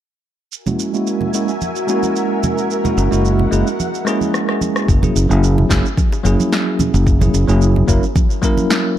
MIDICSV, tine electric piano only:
0, 0, Header, 1, 2, 480
1, 0, Start_track
1, 0, Tempo, 545455
1, 459, Time_signature, 4, 2, 24, 8
1, 7905, End_track
2, 0, Start_track
2, 0, Title_t, "Tine electric piano"
2, 0, Program_c, 0, 4
2, 581, Note_on_c, 0, 56, 61
2, 583, Note_on_c, 0, 58, 54
2, 588, Note_on_c, 0, 61, 56
2, 592, Note_on_c, 0, 64, 55
2, 596, Note_on_c, 0, 66, 69
2, 793, Note_off_c, 0, 56, 0
2, 795, Note_off_c, 0, 58, 0
2, 797, Note_off_c, 0, 61, 0
2, 799, Note_off_c, 0, 64, 0
2, 801, Note_off_c, 0, 66, 0
2, 820, Note_on_c, 0, 56, 66
2, 823, Note_on_c, 0, 58, 64
2, 828, Note_on_c, 0, 61, 61
2, 831, Note_on_c, 0, 64, 62
2, 836, Note_on_c, 0, 66, 73
2, 1149, Note_off_c, 0, 56, 0
2, 1151, Note_off_c, 0, 58, 0
2, 1153, Note_off_c, 0, 61, 0
2, 1155, Note_off_c, 0, 64, 0
2, 1157, Note_off_c, 0, 66, 0
2, 1176, Note_on_c, 0, 56, 70
2, 1180, Note_on_c, 0, 58, 61
2, 1184, Note_on_c, 0, 61, 68
2, 1188, Note_on_c, 0, 64, 68
2, 1192, Note_on_c, 0, 66, 79
2, 1309, Note_off_c, 0, 56, 0
2, 1311, Note_off_c, 0, 58, 0
2, 1313, Note_off_c, 0, 61, 0
2, 1315, Note_off_c, 0, 64, 0
2, 1317, Note_off_c, 0, 66, 0
2, 1644, Note_on_c, 0, 56, 79
2, 1653, Note_on_c, 0, 58, 75
2, 1660, Note_on_c, 0, 61, 76
2, 1668, Note_on_c, 0, 64, 72
2, 1674, Note_on_c, 0, 66, 91
2, 2469, Note_off_c, 0, 56, 0
2, 2473, Note_off_c, 0, 58, 0
2, 2477, Note_off_c, 0, 61, 0
2, 2480, Note_off_c, 0, 64, 0
2, 2484, Note_off_c, 0, 66, 0
2, 2497, Note_on_c, 0, 56, 66
2, 2502, Note_on_c, 0, 58, 61
2, 2507, Note_on_c, 0, 61, 60
2, 2511, Note_on_c, 0, 64, 60
2, 2513, Note_on_c, 0, 66, 69
2, 2712, Note_off_c, 0, 56, 0
2, 2714, Note_off_c, 0, 58, 0
2, 2716, Note_off_c, 0, 61, 0
2, 2718, Note_off_c, 0, 64, 0
2, 2719, Note_off_c, 0, 66, 0
2, 2735, Note_on_c, 0, 56, 78
2, 2738, Note_on_c, 0, 58, 70
2, 2743, Note_on_c, 0, 61, 73
2, 2748, Note_on_c, 0, 64, 70
2, 2750, Note_on_c, 0, 66, 90
2, 3067, Note_off_c, 0, 56, 0
2, 3068, Note_off_c, 0, 58, 0
2, 3070, Note_off_c, 0, 61, 0
2, 3073, Note_off_c, 0, 64, 0
2, 3074, Note_off_c, 0, 66, 0
2, 3089, Note_on_c, 0, 56, 84
2, 3094, Note_on_c, 0, 58, 82
2, 3097, Note_on_c, 0, 61, 76
2, 3102, Note_on_c, 0, 64, 73
2, 3105, Note_on_c, 0, 68, 89
2, 3226, Note_off_c, 0, 56, 0
2, 3228, Note_off_c, 0, 58, 0
2, 3230, Note_off_c, 0, 61, 0
2, 3232, Note_off_c, 0, 64, 0
2, 3234, Note_off_c, 0, 68, 0
2, 3563, Note_on_c, 0, 56, 90
2, 3571, Note_on_c, 0, 58, 83
2, 3579, Note_on_c, 0, 61, 84
2, 3586, Note_on_c, 0, 64, 81
2, 3594, Note_on_c, 0, 68, 101
2, 4278, Note_off_c, 0, 56, 0
2, 4282, Note_off_c, 0, 58, 0
2, 4286, Note_off_c, 0, 61, 0
2, 4289, Note_off_c, 0, 64, 0
2, 4293, Note_off_c, 0, 68, 0
2, 4420, Note_on_c, 0, 54, 65
2, 4424, Note_on_c, 0, 58, 60
2, 4426, Note_on_c, 0, 61, 64
2, 4431, Note_on_c, 0, 64, 58
2, 4434, Note_on_c, 0, 68, 74
2, 4633, Note_off_c, 0, 54, 0
2, 4635, Note_off_c, 0, 58, 0
2, 4636, Note_off_c, 0, 61, 0
2, 4638, Note_off_c, 0, 64, 0
2, 4640, Note_off_c, 0, 68, 0
2, 4660, Note_on_c, 0, 54, 69
2, 4665, Note_on_c, 0, 58, 68
2, 4669, Note_on_c, 0, 61, 69
2, 4672, Note_on_c, 0, 64, 70
2, 4677, Note_on_c, 0, 68, 84
2, 4989, Note_off_c, 0, 54, 0
2, 4991, Note_off_c, 0, 58, 0
2, 4994, Note_off_c, 0, 61, 0
2, 4995, Note_off_c, 0, 64, 0
2, 4998, Note_off_c, 0, 68, 0
2, 5010, Note_on_c, 0, 54, 78
2, 5012, Note_on_c, 0, 58, 69
2, 5018, Note_on_c, 0, 61, 74
2, 5020, Note_on_c, 0, 64, 66
2, 5024, Note_on_c, 0, 68, 85
2, 5146, Note_off_c, 0, 54, 0
2, 5147, Note_off_c, 0, 58, 0
2, 5150, Note_off_c, 0, 61, 0
2, 5151, Note_off_c, 0, 64, 0
2, 5153, Note_off_c, 0, 68, 0
2, 5485, Note_on_c, 0, 54, 86
2, 5491, Note_on_c, 0, 58, 78
2, 5498, Note_on_c, 0, 61, 81
2, 5508, Note_on_c, 0, 64, 79
2, 5513, Note_on_c, 0, 68, 93
2, 6309, Note_off_c, 0, 54, 0
2, 6312, Note_off_c, 0, 58, 0
2, 6315, Note_off_c, 0, 61, 0
2, 6321, Note_off_c, 0, 64, 0
2, 6323, Note_off_c, 0, 68, 0
2, 6339, Note_on_c, 0, 54, 70
2, 6343, Note_on_c, 0, 58, 63
2, 6348, Note_on_c, 0, 61, 63
2, 6351, Note_on_c, 0, 64, 59
2, 6355, Note_on_c, 0, 68, 75
2, 6552, Note_off_c, 0, 54, 0
2, 6555, Note_off_c, 0, 58, 0
2, 6557, Note_off_c, 0, 61, 0
2, 6559, Note_off_c, 0, 64, 0
2, 6560, Note_off_c, 0, 68, 0
2, 6579, Note_on_c, 0, 54, 82
2, 6583, Note_on_c, 0, 58, 74
2, 6588, Note_on_c, 0, 61, 70
2, 6591, Note_on_c, 0, 64, 69
2, 6593, Note_on_c, 0, 68, 88
2, 6908, Note_off_c, 0, 54, 0
2, 6911, Note_off_c, 0, 58, 0
2, 6913, Note_off_c, 0, 61, 0
2, 6915, Note_off_c, 0, 64, 0
2, 6916, Note_off_c, 0, 68, 0
2, 6929, Note_on_c, 0, 54, 86
2, 6935, Note_on_c, 0, 58, 83
2, 6937, Note_on_c, 0, 61, 79
2, 6943, Note_on_c, 0, 64, 82
2, 6945, Note_on_c, 0, 70, 94
2, 7066, Note_off_c, 0, 54, 0
2, 7069, Note_off_c, 0, 58, 0
2, 7070, Note_off_c, 0, 61, 0
2, 7073, Note_off_c, 0, 64, 0
2, 7074, Note_off_c, 0, 70, 0
2, 7405, Note_on_c, 0, 54, 94
2, 7409, Note_on_c, 0, 58, 85
2, 7417, Note_on_c, 0, 61, 82
2, 7426, Note_on_c, 0, 64, 86
2, 7433, Note_on_c, 0, 70, 105
2, 7905, Note_off_c, 0, 54, 0
2, 7905, Note_off_c, 0, 58, 0
2, 7905, Note_off_c, 0, 61, 0
2, 7905, Note_off_c, 0, 64, 0
2, 7905, Note_off_c, 0, 70, 0
2, 7905, End_track
0, 0, End_of_file